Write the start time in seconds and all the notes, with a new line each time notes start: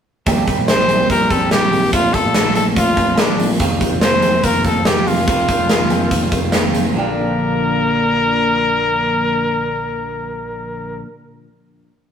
0.26 A#1 A#2 D#3 G3 C4 G4, kick, closed hi-hat
0.48 C4, kick, closed hi-hat
0.58 A#1
0.67 A#1 D#3 G3 C4 G4 C5, snare, closed hi-hat
0.88 A#1 G3 A#3 C4 G4, closed hi-hat
0.99 C4
1.09 A#1 D#3 G3 C4 G4 A#4, kick, closed hi-hat
1.29 A#1 G3 C4 G4 A4, kick, closed hi-hat
1.51 A#1 D#3 G3 C4 G4, snare, closed hi-hat
1.72 A#1 C4, open hi-hat
1.92 A#1 A#2 D3 A3 C4 F4, kick, closed hi-hat
2.14 C4 A4, kick, closed hi-hat
2.25 A#1
2.33 A#1 D3 A3 C4 F4, snare, closed hi-hat
2.55 A#1 A3 C4 F4 A4, closed hi-hat
2.75 A#1 D3 A3 C4 F4, kick, closed hi-hat
2.97 A#1 A3 C4 F4, kick, closed hi-hat
3.18 A#1 D3 A3 C4 D4 F4, snare, closed hi-hat
3.39 A#1 C4, open hi-hat
3.60 F1 F2 C3 D#3 A#3 C4 F4, kick, closed hi-hat
3.81 C4, kick, closed hi-hat
3.92 F1
4.01 F1 D#3 A#3 C4 F4 C5, snare, closed hi-hat
4.22 F1 D#3 A#3 C4 F4, closed hi-hat
4.44 F1 D#3 A#3 C4 F4 A#4, kick, closed hi-hat
4.64 F1 D#3 A#3 C4 F4 A4, kick, closed hi-hat
4.85 F1 D#3 A#3 C4 F4 G4, snare, closed hi-hat
5.07 F1 C4 F4, open hi-hat
5.27 F1 F2 C3 D#3 A#3 C4 F4, kick, closed hi-hat
5.49 C4, kick, closed hi-hat
5.59 F1
5.69 F1 D#3 A#3 C4 F4, snare, closed hi-hat
5.90 F1 D#3 A#3 C4 F4, closed hi-hat
6.11 F1 D#3 A#3 C4 F4, kick, closed hi-hat
6.32 F1 D#3 A#3 C4 F4, kick, closed hi-hat
6.52 F1 D#3 A#3 C4 F4, snare, closed hi-hat
6.73 F1 C4, closed hi-hat
6.93 A#1 A#2 D3 F3 A#3 A#4
6.97 D4 G4